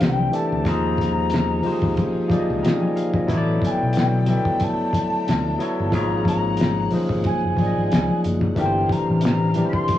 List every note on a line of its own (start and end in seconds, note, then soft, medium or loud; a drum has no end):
0.00 0.27 C2 loud
0.00 0.21 E3 medium
0.00 0.62 G3 medium
0.00 0.31 A3 medium
0.00 0.62 A3 medium
0.00 0.62 C4 medium
0.00 0.33 D4 medium
0.00 0.34 G4 medium
0.00 0.62 G4 medium
0.00 0.67 A#4 medium
0.00 0.67 C5 loud
0.00 0.36 G5 loud
0.00 snare loud
0.00 closed hi-hat medium
0.16 high conga medium
0.30 0.62 E3 medium
0.30 0.62 A3 medium
0.30 0.63 D4 medium
0.30 0.63 G4 medium
0.30 closed hi-hat medium
0.30 muted conga soft
0.30 low conga soft
0.34 0.64 A4 medium
0.34 0.69 A5 medium
0.52 0.66 D2 medium
0.63 1.60 D#2 loud
0.63 3.26 D#3 medium
0.63 1.55 F3 loud
0.63 3.26 G#3 medium
0.63 1.56 A#3 medium
0.63 3.26 C#4 medium
0.63 1.57 D#4 medium
0.63 3.26 F4 medium
0.63 1.57 G#4 loud
0.63 kick loud
0.63 closed hi-hat medium
0.63 muted conga soft
0.63 low conga medium
0.67 1.58 C5 loud
0.67 1.98 A#5 loud
0.97 kick loud
0.97 closed hi-hat medium
0.97 muted conga soft
0.97 high conga soft
1.30 closed hi-hat medium
1.30 muted conga soft
1.34 snare loud
1.62 2.24 F3 medium
1.62 2.24 A#3 medium
1.62 2.25 D#4 medium
1.62 1.72 G4 medium
1.62 muted fingered electric bass stroke soft
1.62 open hi-hat soft
1.62 high conga medium
1.62 low conga medium
1.66 2.26 C5 medium
1.72 2.29 G#4 medium
1.82 1.94 D#2 medium
1.82 kick loud
1.96 kick loud
1.96 closed hi-hat medium
1.96 muted conga soft
1.96 high conga medium
2.28 3.20 F3 medium
2.28 3.21 A#3 medium
2.28 3.22 D#4 medium
2.28 3.22 G#4 medium
2.28 muted fingered electric bass stroke medium
2.28 kick medium
2.28 closed hi-hat medium
2.28 muted conga soft
2.28 high conga medium
2.32 2.38 D5 medium
2.39 2.67 D#5 medium
2.50 2.61 C#2 medium
2.63 2.80 G5 medium
2.63 2.94 A#5 medium
2.63 snare loud
2.63 closed hi-hat medium
2.63 muted conga soft
2.81 2.95 G#5 medium
2.81 high conga medium
2.95 3.27 F5 medium
2.95 closed hi-hat medium
2.95 muted conga soft
2.95 low conga soft
3.14 3.46 D#5 medium
3.14 kick loud
3.27 3.56 A1 loud
3.27 5.90 D3 medium
3.27 4.19 F#3 loud
3.27 5.90 A3 medium
3.27 4.20 B3 loud
3.27 5.90 B3 medium
3.27 4.20 E4 loud
3.27 4.21 A4 loud
3.27 5.90 G5 medium
3.27 kick loud
3.27 closed hi-hat medium
3.27 muted conga soft
3.27 low conga medium
3.31 3.37 C#5 loud
3.37 4.25 D5 loud
3.62 3.71 G#5 medium
3.62 kick medium
3.62 closed hi-hat medium
3.62 muted conga soft
3.62 high conga soft
3.70 3.94 G5 medium
3.82 4.35 B1 medium
3.93 closed hi-hat medium
3.97 4.65 G5 medium
3.97 snare loud
4.26 5.49 F#3 medium
4.26 5.49 B3 medium
4.26 5.50 E4 medium
4.26 5.50 A4 medium
4.26 closed hi-hat medium
4.26 muted conga soft
4.26 high conga medium
4.26 low conga medium
4.31 4.36 D5 medium
4.37 5.54 E5 medium
4.45 kick medium
4.60 5.94 A5 loud
4.60 kick loud
4.60 closed hi-hat medium
4.60 muted conga soft
4.60 high conga medium
4.93 kick medium
4.93 closed hi-hat medium
4.93 high conga medium
5.27 5.54 D2 medium
5.27 snare loud
5.27 closed hi-hat medium
5.27 muted conga soft
5.45 high conga medium
5.58 5.89 F#3 medium
5.58 5.90 B3 medium
5.58 5.90 E4 medium
5.58 5.91 A4 medium
5.58 closed hi-hat medium
5.58 low conga soft
5.62 5.91 C#5 loud
5.80 5.93 G1 medium
5.91 6.88 G#1 loud
5.91 8.54 C#3 medium
5.91 6.83 F3 loud
5.91 8.54 G#3 medium
5.91 6.84 A#3 medium
5.91 8.54 A#3 medium
5.91 6.84 D#4 medium
5.91 6.85 G#4 medium
5.91 8.54 F#5 medium
5.91 6.24 A#5 loud
5.91 kick loud
5.91 closed hi-hat medium
5.91 muted conga soft
5.91 low conga medium
5.95 6.85 C#5 loud
6.25 6.88 A#5 medium
6.25 kick medium
6.25 closed hi-hat medium
6.25 muted conga soft
6.25 high conga soft
6.57 closed hi-hat medium
6.57 muted conga soft
6.61 snare loud
6.91 7.52 F3 medium
6.91 7.53 A#3 medium
6.91 7.53 D#4 medium
6.91 7.54 G#4 medium
6.91 muted fingered electric bass stroke soft
6.91 open hi-hat medium
6.91 muted conga soft
6.91 high conga medium
6.91 low conga medium
6.95 7.54 C5 medium
7.09 7.22 G#1 medium
7.09 kick loud
7.24 8.20 G#5 loud
7.24 kick loud
7.24 closed hi-hat medium
7.24 high conga medium
7.45 7.56 F#1 medium
7.56 7.72 G#1 medium
7.56 8.48 F3 medium
7.56 8.48 A#3 medium
7.56 8.49 D#4 medium
7.56 8.50 G#4 medium
7.56 kick medium
7.56 closed hi-hat medium
7.56 muted conga soft
7.56 high conga medium
7.60 7.66 D5 medium
7.66 8.53 D#5 medium
7.78 7.89 G#1 medium
7.91 8.06 C#2 medium
7.91 snare loud
7.91 closed hi-hat medium
7.91 muted conga soft
8.09 high conga medium
8.23 8.51 F#1 loud
8.23 closed hi-hat medium
8.23 muted conga soft
8.23 low conga soft
8.41 kick loud
8.55 8.84 G1 loud
8.55 9.98 C3 medium
8.55 9.47 E3 loud
8.55 9.98 G3 medium
8.55 9.48 A3 medium
8.55 9.98 A3 medium
8.55 9.48 D4 medium
8.55 9.49 G4 medium
8.55 9.98 F5 medium
8.55 kick loud
8.55 closed hi-hat medium
8.55 muted conga soft
8.55 low conga medium
8.59 8.65 A#4 medium
8.59 8.93 G5 medium
8.66 9.52 C5 loud
8.89 9.23 A#5 medium
8.89 kick medium
8.89 closed hi-hat medium
8.89 high conga soft
9.10 9.62 A1 medium
9.21 9.64 A#5 loud
9.21 closed hi-hat medium
9.21 muted conga soft
9.25 snare loud
9.54 9.98 E3 medium
9.54 9.98 A3 medium
9.54 9.98 D4 medium
9.54 9.98 G4 medium
9.54 closed hi-hat medium
9.54 high conga medium
9.54 low conga medium
9.58 9.64 A#4 medium
9.65 9.98 C5 medium
9.65 9.98 C6 loud
9.73 kick loud
9.88 kick loud
9.88 closed hi-hat medium
9.88 high conga medium